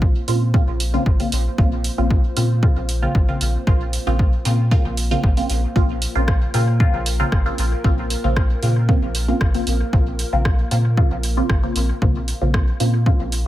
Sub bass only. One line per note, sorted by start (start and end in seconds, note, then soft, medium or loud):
0.00 0.20 A#1 medium
0.28 0.59 A#2 medium
0.68 0.98 A#1 medium
1.06 1.22 G#1 loud
1.32 1.48 A#1 medium
1.58 1.89 A#1 loud
1.98 2.29 A#1 medium
2.37 2.68 A#2 medium
2.76 3.07 A#1 loud
3.15 3.31 G#1 loud
3.41 3.57 A#1 medium
3.67 3.98 A#1 loud
4.07 4.37 A#1 loud
4.45 4.76 A#2 medium
4.85 5.16 A#1 loud
5.24 5.40 G#1 loud
5.50 5.66 A#1 medium
5.76 6.07 A#1 loud
6.15 6.46 A#1 medium
6.54 6.85 A#2 medium
6.94 7.24 A#1 loud
7.32 7.48 G#1 loud
7.58 7.74 A#1 medium
7.84 8.15 A#1 loud
8.24 8.55 A#1 loud
8.62 8.94 A#2 medium
9.02 9.33 A#1 medium
9.41 9.57 G#1 loud
9.67 9.83 A#1 medium
9.93 10.24 A#1 loud
10.33 10.63 A#1 loud
10.71 11.02 A#2 medium
11.11 11.42 A#1 loud
11.50 11.66 G#1 loud
11.76 11.92 A#1 medium
12.02 12.33 A#1 loud
12.41 12.72 A#1 loud
12.80 13.11 A#2 medium
13.20 13.47 A#1 medium